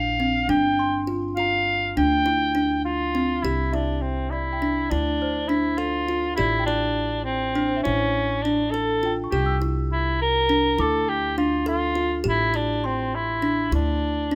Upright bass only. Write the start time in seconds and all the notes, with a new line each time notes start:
Already playing: A#1
0.49 G1
1.97 D2
3.44 C2
4.91 D2
6.39 A1
7.86 A1
9.32 C2
10.78 D2
12.25 A1
13.71 D2